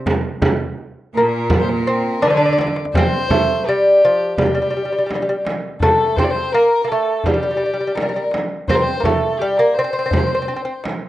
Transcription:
0.06 tombak dum medium
0.06 frame drum medium
0.24 tombak ka soft
0.42 tombak dum medium
0.42 frame drum medium
0.78 tombak ka soft
1.14 2.18 A#2 medium
1.14 1.87 A#3 medium
1.14 1.22 A#4 medium
1.14 tombak ka soft
1.21 1.30 A4 medium
1.29 1.60 A#4 medium
1.50 tombak dum medium
1.50 frame drum medium
1.61 1.70 C5 medium
1.69 2.24 A#4 medium
1.87 2.24 C4 medium
2.22 2.76 D3 medium
2.22 2.29 D4 medium
2.22 2.76 D5 medium
2.22 tombak tek medium
2.22 frame drum medium
2.30 2.36 D4 medium
2.30 tombak ka medium
2.37 2.44 D4 medium
2.37 tombak tek medium
2.45 2.51 D4 medium
2.45 tombak ka medium
2.53 2.59 D4 medium
2.58 2.67 D4 medium
2.58 tombak tek medium
2.58 frame drum medium
2.67 tombak ka medium
2.76 tombak tek medium
2.85 tombak ka medium
2.94 3.30 C4 medium
2.94 3.68 C5 medium
2.94 tombak dum medium
2.94 frame drum medium
3.30 3.67 A3 medium
3.30 tombak dum medium
3.30 frame drum medium
3.66 4.04 G3 medium
3.66 4.38 G4 medium
4.02 4.38 F3 medium
4.02 tombak ka soft
4.38 4.45 G3 medium
4.38 5.42 G4 medium
4.38 tombak dum medium
4.38 frame drum medium
4.46 4.52 G3 soft
4.55 4.61 G3 medium
4.62 4.68 G3 soft
4.70 4.75 G3 medium
4.77 4.83 G3 soft
4.85 4.91 G3 soft
4.92 4.97 G3 soft
4.98 5.05 G3 soft
5.06 5.13 G3 soft
5.06 tombak tek medium
5.11 frame drum medium
5.15 5.21 G3 medium
5.22 5.28 G3 soft
5.29 5.35 G3 medium
5.45 tombak tek medium
5.45 frame drum medium
5.63 tombak ka soft
5.80 6.15 A3 medium
5.80 6.18 A4 medium
5.80 tombak dum medium
5.80 frame drum medium
6.16 6.54 C4 medium
6.16 6.25 C5 medium
6.16 tombak dum medium
6.16 frame drum medium
6.24 6.32 D5 medium
6.30 6.54 C5 medium
6.53 6.83 A#3 medium
6.53 6.89 A#4 medium
6.84 6.90 A#3 medium
6.84 7.16 A4 medium
6.88 7.27 A3 medium
6.88 tombak ka soft
7.16 7.25 A4 medium
7.24 7.32 G3 medium
7.24 7.97 G4 medium
7.24 tombak dum medium
7.24 frame drum medium
7.34 7.40 G3 medium
7.43 7.48 G3 medium
7.51 7.56 G3 soft
7.57 7.63 G3 soft
7.66 7.71 G3 soft
7.74 7.79 G3 soft
7.80 7.86 G3 soft
7.87 7.93 G3 soft
7.95 8.01 G3 soft
7.95 8.32 A#4 medium
7.95 tombak tek medium
7.95 frame drum medium
8.02 8.08 G3 medium
8.09 8.15 G3 soft
8.16 8.22 G3 medium
8.31 tombak tek medium
8.31 frame drum medium
8.49 tombak ka soft
8.68 8.96 C4 medium
8.68 8.77 C5 medium
8.68 tombak dum medium
8.68 frame drum medium
8.75 8.83 A#4 medium
8.82 9.05 C5 medium
8.86 tombak ka soft
9.00 9.05 A#3 medium
9.00 9.40 A4 medium
9.00 tombak dum medium
9.05 9.42 A3 medium
9.05 frame drum medium
9.39 9.59 G3 medium
9.39 9.59 G4 medium
9.57 9.77 A#3 medium
9.57 9.75 A#4 medium
9.74 10.83 C5 medium
9.74 tombak ka soft
9.79 9.83 C4 medium
9.84 9.91 C4 medium
9.93 9.98 C4 medium
9.99 10.05 C4 medium
10.06 10.11 C4 medium
10.11 10.18 C4 medium
10.11 tombak dum medium
10.11 frame drum medium
10.19 10.25 C4 medium
10.27 10.33 C4 soft
10.35 10.41 C4 medium
10.42 10.47 C4 medium
10.48 10.55 C4 medium
10.56 10.64 C4 medium
10.65 10.72 C4 medium
10.84 tombak tek medium
10.84 frame drum medium

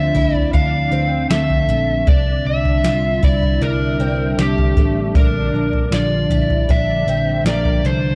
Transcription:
0.00 0.11 D2 medium
0.00 2.05 D3 medium
0.00 2.03 F3 medium
0.00 5.11 C4 medium
0.00 2.04 D4 medium
0.00 0.14 F4 medium
0.00 0.35 E5 medium
0.15 0.49 D2 medium
0.15 0.53 E4 medium
0.15 floor tom medium
0.35 0.54 D5 medium
0.35 floor tom medium
0.53 0.87 D2 medium
0.53 0.91 D4 medium
0.53 1.30 F5 medium
0.53 kick medium
0.91 1.26 D2 medium
0.91 1.30 C4 medium
1.30 1.64 D2 medium
1.30 1.67 A3 medium
1.30 2.10 E5 medium
1.30 snare medium
1.50 floor tom medium
1.69 2.03 A#1 medium
1.69 2.07 A3 medium
2.06 2.41 C2 loud
2.06 8.15 D3 medium
2.06 8.15 G3 medium
2.06 8.15 D4 medium
2.06 2.84 D4 medium
2.06 2.48 D5 medium
2.06 5.12 E5 medium
2.06 kick loud
2.06 floor tom loud
2.45 2.80 C2 medium
2.45 3.25 E5 medium
2.65 floor tom medium
2.84 3.18 C2 medium
2.84 3.22 F4 medium
2.84 snare medium
3.23 3.57 C2 medium
3.23 3.61 E4 medium
3.23 3.63 D5 medium
3.23 kick medium
3.23 floor tom medium
3.43 floor tom medium
3.61 3.95 C2 medium
3.61 3.99 D4 medium
3.61 4.41 A#4 medium
3.99 4.33 C2 medium
3.99 4.38 C4 medium
4.38 4.72 C2 medium
4.38 4.76 A3 medium
4.38 5.19 G4 medium
4.38 snare loud
4.58 floor tom medium
4.77 5.11 A1 medium
4.77 5.15 A3 medium
4.77 kick medium
5.15 5.49 A#1 loud
5.15 8.15 F3 medium
5.15 5.92 D4 medium
5.15 5.95 A#4 medium
5.15 kick loud
5.15 floor tom loud
5.53 5.87 A#1 medium
5.73 floor tom medium
5.91 6.25 A#1 medium
5.91 6.30 F4 medium
5.91 6.72 D5 medium
5.91 snare medium
6.30 6.64 A#1 medium
6.30 6.69 E4 medium
6.30 floor tom medium
6.50 floor tom medium
6.69 7.03 A#1 medium
6.69 7.07 D4 medium
6.69 7.47 E5 medium
6.69 kick medium
7.06 7.41 A#1 medium
7.06 7.46 C4 medium
7.45 7.79 A#1 medium
7.45 7.84 A#3 medium
7.45 7.86 D5 medium
7.45 snare medium
7.65 floor tom medium
7.84 8.15 C2 medium
7.84 8.15 A3 medium
7.84 8.15 C5 medium

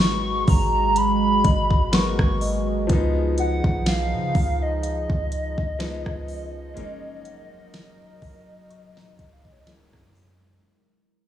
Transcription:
0.00 0.43 G#1 loud
0.00 1.87 F#3 medium
0.00 2.86 G#3 medium
0.00 1.88 A#3 medium
0.00 1.89 B3 medium
0.00 1.90 D#4 medium
0.00 2.86 F#4 medium
0.00 6.73 G#4 medium
0.00 0.51 C#6 loud
0.48 1.41 G#1 loud
0.48 0.99 A#5 loud
0.48 kick loud
0.48 open hi-hat medium
0.96 1.96 B5 loud
0.96 closed hi-hat medium
1.44 2.16 G#1 loud
1.44 2.40 D#5 medium
1.44 kick medium
1.44 closed hi-hat medium
1.71 kick medium
1.92 2.89 F#3 medium
1.92 2.89 A#3 soft
1.92 2.89 B3 soft
1.92 2.90 F#4 medium
1.92 2.68 C#6 loud
1.92 snare medium
1.92 closed hi-hat medium
2.19 2.87 G#1 loud
2.19 kick loud
2.19 cross-stick loud
2.41 3.34 D#5 medium
2.41 open hi-hat medium
2.87 3.61 C#2 loud
2.87 5.75 F3 medium
2.87 5.77 F3 medium
2.87 5.76 G#3 medium
2.87 5.76 B3 medium
2.87 5.77 D#4 medium
2.87 kick loud
2.87 closed hi-hat medium
2.93 5.77 D#4 medium
3.38 3.89 F#5 loud
3.38 closed hi-hat medium
3.64 4.14 B1 loud
3.64 kick loud
3.86 4.64 F5 loud
3.86 snare loud
3.86 closed hi-hat medium
4.13 4.34 C#3 loud
4.35 5.06 C#2 loud
4.35 kick loud
4.35 open hi-hat medium
4.62 9.34 D#5 loud
4.83 6.24 F5 medium
4.83 closed hi-hat medium
5.10 5.56 C#2 loud
5.10 kick medium
5.32 closed hi-hat medium
5.58 6.04 C#2 loud
5.58 kick medium
5.79 6.76 F3 medium
5.79 6.75 F3 medium
5.79 6.72 G#3 medium
5.79 6.77 B3 medium
5.79 6.76 C#4 medium
5.79 6.77 D#4 medium
5.79 snare loud
5.79 closed hi-hat medium
6.06 6.74 C#2 loud
6.06 kick medium
6.06 cross-stick loud
6.28 open hi-hat medium
6.74 8.18 F#1 loud
6.74 9.64 F#3 medium
6.74 9.62 G#3 medium
6.74 9.63 A#3 medium
6.74 9.64 C#4 medium
6.74 9.64 D#4 medium
6.74 10.60 A#4 medium
6.74 closed hi-hat medium
6.80 9.65 D#4 medium
7.25 10.11 F#5 medium
7.25 closed hi-hat medium
7.74 snare loud
7.74 closed hi-hat medium
8.22 9.15 F#1 loud
8.22 kick loud
8.22 open hi-hat soft
8.70 10.11 C#6 medium
8.70 closed hi-hat medium
8.97 snare medium
9.19 9.90 C#2 loud
9.19 kick medium
9.19 closed hi-hat medium
9.33 9.44 F5 medium
9.43 9.54 D#5 medium
9.43 kick medium
9.52 9.62 C#5 medium
9.60 9.68 D#5 medium
9.66 10.63 G#3 medium
9.66 10.64 A#3 medium
9.66 10.64 C#4 medium
9.66 10.63 E4 medium
9.66 10.65 E4 medium
9.66 snare loud
9.66 closed hi-hat medium
9.93 10.61 F#2 loud
9.93 kick medium
9.93 cross-stick loud
10.15 open hi-hat medium

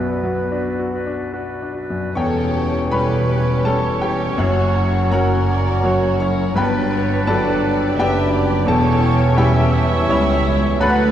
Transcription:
0.00 2.11 B1 soft
0.00 0.40 F#2 soft
0.00 1.30 B3 medium
0.09 0.51 F#4 soft
0.09 0.51 B4 soft
0.09 0.48 D5 soft
0.23 0.68 F#3 soft
0.50 0.96 D4 soft
0.50 0.92 F#4 soft
0.50 0.81 B4 soft
0.50 0.90 D5 soft
0.79 1.23 F#4 soft
0.91 1.33 F#4 soft
0.91 1.33 B4 soft
0.91 1.32 D5 soft
1.07 1.50 D4 soft
1.33 1.78 F#4 soft
1.33 1.74 F#4 soft
1.33 1.74 B4 soft
1.33 1.73 D5 soft
1.62 2.06 D4 soft
1.74 2.15 F#4 soft
1.74 2.15 B4 soft
1.74 2.14 D5 soft
1.90 2.16 F#2 soft
2.14 4.35 E1 soft
2.14 4.34 E2 medium
2.14 4.35 E2 medium
2.14 4.34 E3 soft
2.14 4.34 G3 soft
2.14 4.34 C#4 soft
2.14 6.58 C#4 soft
2.14 2.88 A4 soft
2.14 2.52 A4 medium
2.14 4.34 C#5 medium
2.14 2.88 C#5 medium
2.14 6.52 C#5 soft
2.14 2.89 C#5 medium
2.14 4.09 G5 soft
2.14 2.89 G5 medium
2.14 2.88 C#6 medium
2.54 2.92 G4 soft
2.91 3.61 G3 soft
2.91 3.62 C#4 soft
2.91 3.28 G4 soft
2.91 3.28 A4 soft
2.91 3.61 B4 medium
2.91 3.65 B4 medium
2.91 3.62 C#5 soft
2.91 3.61 B5 medium
3.28 4.36 G4 soft
3.28 3.65 B4 medium
3.65 4.35 G3 soft
3.65 4.35 C#4 soft
3.65 4.02 A4 medium
3.65 4.00 A4 soft
3.65 5.11 C#5 medium
3.65 4.35 C#5 soft
3.65 3.99 A5 medium
4.01 4.38 G4 medium
4.01 4.36 G4 soft
4.01 4.36 G5 medium
4.37 6.52 F#1 medium
4.37 6.52 F#2 medium
4.37 8.36 F#3 soft
4.37 5.11 F#3 soft
4.37 5.11 C#4 soft
4.37 5.11 F#4 medium
4.37 4.75 F#4 medium
4.37 5.08 F#4 soft
4.37 5.10 C#5 medium
4.37 5.08 C#5 soft
4.37 5.08 F#5 medium
4.37 6.53 F#5 medium
4.76 5.12 E4 medium
5.11 5.80 F#3 soft
5.11 6.54 F#3 medium
5.11 6.54 C#4 medium
5.11 5.83 F#4 soft
5.11 5.80 F#4 soft
5.11 5.48 A#4 medium
5.11 6.20 A#4 medium
5.11 6.17 A#4 medium
5.11 6.53 C#5 medium
5.11 5.80 C#5 medium
5.11 6.17 F#5 medium
5.11 6.16 A#5 medium
5.47 5.83 D5 medium
5.83 6.52 F#3 soft
5.83 6.19 F#4 medium
5.83 6.52 F#4 soft
5.83 6.20 C#5 medium
5.83 6.20 C#5 soft
6.20 6.56 E4 medium
6.20 6.55 A#4 medium
6.20 6.55 C#5 medium
6.20 6.54 C#5 medium
6.20 6.53 C#6 medium
6.55 8.62 G1 medium
6.55 7.98 G1 medium
6.55 8.62 G2 medium
6.55 7.98 G2 medium
6.55 7.95 F#3 medium
6.55 7.95 D4 medium
6.55 7.26 D4 medium
6.55 8.40 D4 medium
6.55 7.94 B4 medium
6.55 8.36 B4 soft
6.55 6.92 B4 medium
6.55 7.28 B4 medium
6.55 7.24 B4 medium
6.55 10.80 G5 medium
6.55 7.24 G5 medium
6.55 7.24 B5 medium
6.92 7.27 C#5 medium
7.27 7.94 F#3 soft
7.27 7.94 D4 soft
7.27 7.63 E4 medium
7.27 7.98 A4 medium
7.27 7.94 A4 medium
7.27 7.94 B4 medium
7.27 7.96 D5 medium
7.27 7.93 A5 medium
7.63 8.67 D4 medium
7.97 8.65 F#1 medium
7.97 8.65 F#2 medium
7.97 8.63 F#3 medium
7.97 8.66 F#3 medium
7.97 8.66 D4 medium
7.97 8.63 D4 medium
7.97 8.66 G4 medium
7.97 8.64 G4 medium
7.97 8.65 B4 medium
7.97 8.63 B4 medium
7.97 8.64 D5 medium
7.97 8.32 E5 medium
7.97 8.63 G5 medium
8.31 8.66 D5 medium
8.65 10.76 E1 medium
8.65 10.09 E1 medium
8.65 10.09 E2 medium
8.65 10.76 E2 medium
8.65 10.76 E3 medium
8.65 9.21 E3 medium
8.65 10.76 C#4 medium
8.65 9.21 C#4 medium
8.65 9.36 C#4 medium
8.65 9.36 A4 medium
8.65 9.34 A4 medium
8.65 9.35 C#5 medium
8.65 9.37 C#5 medium
8.65 10.76 C#5 medium
8.65 9.34 A5 medium
9.37 10.78 E3 medium
9.37 10.05 G3 medium
9.37 10.77 C#4 medium
9.37 9.73 C#4 medium
9.37 10.05 E4 medium
9.37 10.09 G4 medium
9.37 10.06 G4 medium
9.37 10.77 C#5 medium
9.37 10.05 C#5 medium
9.37 10.80 E5 medium
9.37 10.06 E5 medium
9.37 10.05 G5 medium
9.73 10.80 E4 medium
10.09 10.80 C#2 medium
10.09 10.76 G3 medium
10.09 10.76 E4 medium
10.09 10.77 C#5 medium
10.79 11.12 D2 medium
10.79 11.12 D3 medium
10.79 11.06 F#3 medium
10.79 11.12 F#3 medium
10.79 11.12 D4 medium
10.79 11.05 D4 medium
10.79 11.12 F#4 medium
10.79 11.12 B4 medium
10.79 11.05 B4 medium
10.79 11.12 B4 medium
10.79 11.12 F#5 medium
10.79 11.12 B5 medium

